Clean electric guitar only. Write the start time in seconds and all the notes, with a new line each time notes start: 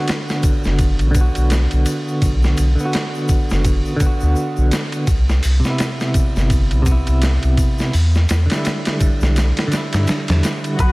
Already playing: D3 B3
0.00 F#4
1.11 D3
1.16 B3
1.21 F#4
2.75 D3
2.80 B3
2.85 F#4
3.96 D3
4.01 B3
4.06 F#4
5.60 C3
5.65 B3
5.70 E4
6.82 C3
6.87 B3
6.92 E4
8.46 D3
8.50 G3
8.55 E4
9.67 D3
9.72 G3
9.77 E4